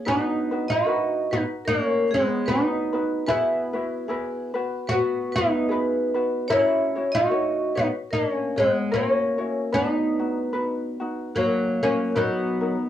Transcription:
0.05 B3 D#4 F#4 B4
0.51 D#4 F#4 B4
0.68 D#4 F#4 D#5
0.86 D#4 F#4 A#4 B4
1.31 B3 D#4 F#4 B4
1.65 A#3 D4 A#4
1.85 C#4
2.11 B3 G#4
2.15 G#3
2.46 B3 D#4 F#4 B4
2.93 D#4 F#4 B4
3.26 B3 E4 F#4 G#4 B4
3.73 E4 F#4 B4
4.08 E4 F#4 G#4 B4
4.54 F#4 B4
4.87 F#4 B4
4.91 B3
5.32 D#4 B4
5.38 B3
5.69 F#4 G#4 B4
6.14 F#4 B4
6.48 E4 F#4 A#4 C#5
6.52 C#4
6.96 E4 F#4 C#5
7.12 F#4 D#5
7.16 D#4
7.30 F#4 A#4 C#5
7.75 B3 D#4 F#4 B4 C#5
8.11 A#3 D4 A#4
8.31 C#4
8.56 G#3 B3 G#4
8.91 A#3 C#4 E4 F#4 A#4 C#5
9.38 E4 F#4 C#5
9.72 B3 D#4 F#4 B4
10.19 D#4 F#4
10.53 D#4 F#4 B4
11.00 D#4 F#4
11.35 F#3 A#3 F#4
11.83 A#3 C#4
12.15 F#3 B3 D#4 F#4 A#4 B4
12.61 D#4 F#4 A#4

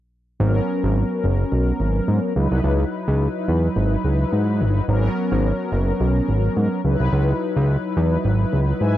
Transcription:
0.39 G#1 F#3 B3 C#4 A#4
0.84 G#1
1.24 F#1
1.52 B1
1.80 G#1
2.08 G#2
2.35 C#2 F#3 D#4 E4 B4
2.52 C2
2.64 C#2
3.08 C#2
3.48 E2
3.76 G#1
4.05 C#2
4.33 G#2
4.61 G1
4.87 G#1 F#3 B3 C#4 A#4
5.32 G#1
5.72 F#1
6.00 B1
6.28 G#1
6.57 G#2
6.84 C#2 F#3 D#4 E4 B4
7.00 C2
7.13 C#2
7.56 C#2
7.97 E2
8.25 G#1
8.53 C#2
8.81 G#2 E5 G#5

